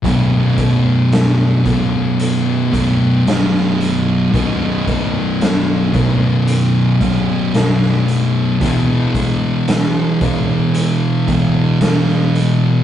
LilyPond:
<<
  \new Staff \with { instrumentName = "Distorted electric guitar" } { \clef bass \time 4/4 \key e \dorian \tempo 4 = 56 <b,, fis, b,>4. <b,, fis, b,>2~ <b,, fis, b,>8 | <b,, fis, b,>4. <b,, fis, b,>2~ <b,, fis, b,>8 | <e, b, e>4. <e, b, e>2~ <e, b, e>8 | }
  \new Staff \with { instrumentName = "Distorted electric guitar" } { \clef bass \time 4/4 \key e \dorian <b,, fis, b,>2~ <b,, fis, b,>8 <b,, fis, b,>8 <b,, fis, b,>4 | <b,, fis, b,>2~ <b,, fis, b,>8 <b,, fis, b,>8 <b,, fis, b,>4 | <e, b, e>2~ <e, b, e>8 <e, b, e>8 <e, b, e>4 | }
  \new DrumStaff \with { instrumentName = "Drums" } \drummode { \time 4/4 <hh bd>8 <hh bd>8 <hh sn>8 <hh bd>8 hh8 <hh bd>8 <hh sn>16 sn16 hh8 | <hh bd>8 <hh bd>8 <hh sn>8 <hh bd>8 hh8 <hh bd>8 <hh sn>16 sn16 hh8 | <hh bd>8 <hh bd>8 <hh sn>8 <hh bd>8 hh8 <hh bd>8 <hh sn>16 sn16 hh8 | }
>>